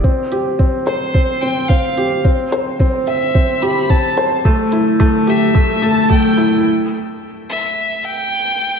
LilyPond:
<<
  \new Staff \with { instrumentName = "Violin" } { \time 4/4 \key f \lydian \tempo 4 = 109 r4. c''4 g''8 f''4 | r4. e''4 b''8 a''4 | r4. e''4 a''8 g''4 | r4. e''4 g''4. | }
  \new Staff \with { instrumentName = "Felt piano" } { \time 4/4 \key f \lydian c'8 g'8 c'8 c''8 c'8 c'8 c'8 g'8 | c'8 c''8 c'8 e''8 c'8 g'8 c'8 c''8 | a8 e'8 a8 g'8 a8 a8 a8 e'8 | r1 | }
  \new Staff \with { instrumentName = "Sub bass" } { \clef bass \time 4/4 \key f \lydian r16 f,,16 f,,16 r8. f,,16 r8. f,,16 r8. f,16 r16 | r16 c,16 c,16 r8. c,16 r8. c,16 r8. g,,16 r16 | r16 a,,16 a,,16 r8. a,,16 r8. a,,16 r8. a,16 r16 | r1 | }
  \new DrumStaff \with { instrumentName = "Drums" } \drummode { \time 4/4 bd8 hh8 bd8 hh8 bd8 hh8 bd8 hh8 | bd8 hh8 bd8 hh8 bd8 hh8 bd8 hh8 | bd8 hh8 bd8 hh8 bd8 hh8 bd8 hh8 | r4 r4 r4 r4 | }
>>